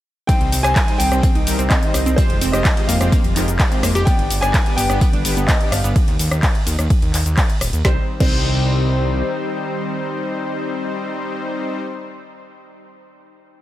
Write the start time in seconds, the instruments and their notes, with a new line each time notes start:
0.27 analog synth pad D#3 G3 C4 D#4, supersaw synth G3 C4 D#4 C5, synth arpeggio sound C4, grand piano G5, kick, closed hi-hat, ride, tambourine, shaker
0.41 analog synth bass C2, closed hi-hat
0.52 analog synth bass C2, open hi-hat, tambourine, shaker
0.63 analog synth bass C2, supersaw synth G3 C4 D#4 C5, grand piano G#5, cross-stick, closed hi-hat, shaker
0.76 kick, snare, clap, closed hi-hat, ride, tambourine, shaker
0.88 supersaw synth G3 C4 D#4 C5, snare, closed hi-hat
0.98 analog synth bass C2, synth arpeggio sound C4, grand piano G5, open hi-hat, tambourine, shaker
1.12 analog synth bass C2, supersaw synth G3 C4 D#4 C5, synth arpeggio sound C4, cross-stick, closed hi-hat, shaker
1.23 synth arpeggio sound C4, kick, closed hi-hat, ride, tambourine, shaker
1.35 analog synth bass C2, synth arpeggio sound D#4, closed hi-hat
1.47 analog synth bass C2, supersaw synth G3 C4 D#4 A#4, snare, open hi-hat, shaker
1.59 analog synth bass C2, synth arpeggio sound C4, closed hi-hat, shaker
1.69 synth arpeggio sound C4, grand piano D#5, kick, snare, clap, closed hi-hat, ride, tambourine, shaker
1.83 supersaw synth G3 C4 D#4 C5, closed hi-hat
1.94 analog synth bass C2, cross-stick, open hi-hat, tambourine, shaker
2.06 analog synth bass C2, synth arpeggio sound C4, closed hi-hat, shaker
2.16 analog synth pad F3 G#3, supersaw synth G#3 F4 G4 C5, synth arpeggio sound C4, grand piano C5, kick, closed hi-hat, ride, tambourine, shaker
2.30 analog synth bass F1, closed hi-hat
2.41 analog synth bass F1, synth arpeggio sound C4, open hi-hat, tambourine, shaker
2.52 analog synth bass F1, supersaw synth G#3 F4 G4 C5, synth arpeggio sound G4, grand piano D#5, cross-stick, closed hi-hat, shaker
2.65 kick, snare, clap, closed hi-hat, ride, tambourine, shaker
2.77 supersaw synth G#3 F4 G4 C5, closed hi-hat
2.87 analog synth bass F1, synth arpeggio sound A#3, grand piano F5, open hi-hat, tambourine, shaker
3.01 analog synth bass F1, supersaw synth G#3 F4 G4 C5, synth arpeggio sound C4, cross-stick, closed hi-hat, shaker
3.12 synth arpeggio sound A#3, kick, closed hi-hat, ride, tambourine, shaker
3.24 analog synth bass F1, closed hi-hat
3.36 analog synth bass F1, supersaw synth G#3 F4 G4 A#4, synth arpeggio sound D#4, clap, open hi-hat, tambourine, shaker
3.48 analog synth bass F1, closed hi-hat, shaker
3.59 kick, snare, clap, closed hi-hat, ride, tambourine, shaker
3.72 supersaw synth G#3 F4 G4 C5, synth arpeggio sound C4, closed hi-hat
3.83 analog synth bass F1, synth arpeggio sound A#3, cross-stick, open hi-hat, tambourine, shaker
3.95 analog synth bass F1, synth arpeggio sound G4, closed hi-hat, shaker
4.05 analog synth pad D3 G3 B3 B4, synth arpeggio sound B3, supersaw synth B3 D4 G4 D5, grand piano G5, kick, closed hi-hat, ride, tambourine, shaker
4.19 analog synth bass G1, closed hi-hat
4.30 analog synth bass G1, open hi-hat, tambourine, shaker
4.41 analog synth bass G1, supersaw synth B3 D4 G4 D5, grand piano G#5, cross-stick, closed hi-hat, shaker
4.54 kick, snare, clap, closed hi-hat, ride, tambourine, shaker
4.66 supersaw synth B3 D4 G4 D5, snare, closed hi-hat
4.76 analog synth bass G1, synth arpeggio sound B3, grand piano G5, open hi-hat, tambourine, shaker
4.90 analog synth bass G1, supersaw synth B3 D4 G4 D5, synth arpeggio sound B3, cross-stick, closed hi-hat, shaker
5.01 synth arpeggio sound B3, kick, closed hi-hat, ride, tambourine, shaker
5.13 analog synth bass G1, synth arpeggio sound D4, closed hi-hat
5.25 analog synth bass G1, supersaw synth B3 D4 G4 B4, snare, open hi-hat, shaker
5.37 analog synth bass G1, synth arpeggio sound B3, closed hi-hat, shaker
5.47 grand piano D#5, kick, snare, clap, closed hi-hat, ride, tambourine, shaker
5.61 supersaw synth B3 D4 G4 D5, closed hi-hat
5.71 analog synth bass G1, grand piano F5, cross-stick, open hi-hat, tambourine, shaker
5.84 analog synth bass G1, synth arpeggio sound B3, closed hi-hat, shaker
5.96 kick, closed hi-hat, ride, shaker
6.08 analog synth bass D#2, closed hi-hat
6.19 analog synth bass D#2, open hi-hat, shaker
6.31 analog synth bass D#2, cross-stick, closed hi-hat, shaker
6.43 kick, clap, closed hi-hat, ride, shaker
6.55 closed hi-hat
6.67 analog synth bass D#2, open hi-hat, shaker
6.79 analog synth bass D#2, cross-stick, closed hi-hat, shaker
6.90 kick, closed hi-hat, ride, shaker
7.02 analog synth bass D#2, closed hi-hat
7.14 analog synth bass D#2, clap, open hi-hat, shaker
7.26 analog synth bass D#2, closed hi-hat, shaker
7.37 kick, clap, closed hi-hat, ride, shaker
7.50 closed hi-hat
7.61 analog synth bass D#1, cross-stick, open hi-hat, shaker
7.73 analog synth bass D#2, closed hi-hat, shaker
7.85 analog synth bass C2, analog synth pad D#3 G3 C4 G4, supersaw synth G3 C4 D#4 C5, synth arpeggio sound C4, grand piano C5, kick, snare
8.20 analog synth bass C2, supersaw synth G3 C4 D#4 C5, synth arpeggio sound C4, grand piano C5, kick, crash